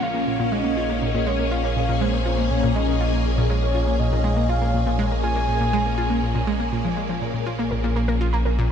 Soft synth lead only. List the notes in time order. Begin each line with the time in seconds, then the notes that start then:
0.03 F5
0.52 D#5
1.27 C#5
1.52 F5
2.01 C5
2.51 C#5
2.76 D#5
3.50 C#5
3.99 D#5
4.49 F5
5.23 G#5